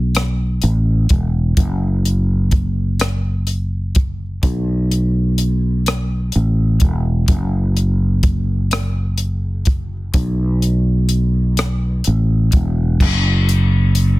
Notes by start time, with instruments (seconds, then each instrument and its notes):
Already playing: fretless electric bass B1
0.15 cross-stick, closed hi-hat
0.62 fretless electric bass A1, closed hi-hat
1.09 fretless electric bass E1, kick, closed hi-hat
1.57 fretless electric bass F#1, kick, closed hi-hat
2.05 closed hi-hat
2.51 kick, closed hi-hat
3.00 cross-stick, closed hi-hat
3.47 closed hi-hat
3.95 kick, closed hi-hat
4.43 fretless electric bass B1, kick, closed hi-hat
4.91 closed hi-hat
5.38 closed hi-hat
5.86 cross-stick, closed hi-hat
6.32 fretless electric bass A1, closed hi-hat
6.80 kick, closed hi-hat
7.28 fretless electric bass F#1, kick, closed hi-hat
7.77 closed hi-hat
8.23 kick, closed hi-hat
8.71 cross-stick, closed hi-hat
9.18 closed hi-hat
9.65 kick, closed hi-hat
10.14 fretless electric bass B1, kick, closed hi-hat
10.62 closed hi-hat
11.09 closed hi-hat
11.57 cross-stick, closed hi-hat
12.04 fretless electric bass A1, closed hi-hat
12.52 fretless electric bass E1, kick, closed hi-hat
13.00 fretless electric bass F#1, kick, crash
13.49 closed hi-hat
13.95 closed hi-hat